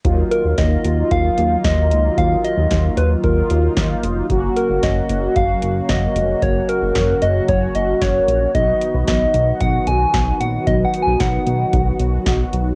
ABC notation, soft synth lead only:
X:1
M:4/4
L:1/8
Q:1/4=113
K:D#m
V:1 name="Soft synth lead"
z A d2 e2 d2 | e d2 B A3 z | z A d2 e2 d2 | c A2 d c d c2 |
d2 d2 f g2 f | (3d f g f4- f z |]